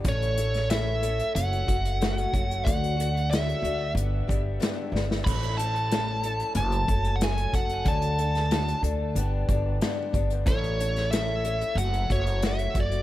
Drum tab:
CC |----------------|----------------|x---------------|----------------|
HH |xxxxx-xxxxxxxxxx|xxxxxxx-x-x-x---|xxxxx-xxxxxxxxxx|xxxxxxx-x-x-x-xx|
SD |---oo-------o---|----o-------o-oo|----o-------o---|---oo-------o---|
BD |o---------o---o-|o---------o-----|o---------o---o-|o---------o---o-|

CC |----------------|
HH |xxxxx-xxxxxxxxxx|
SD |---oo-------o---|
BD |o---------o---o-|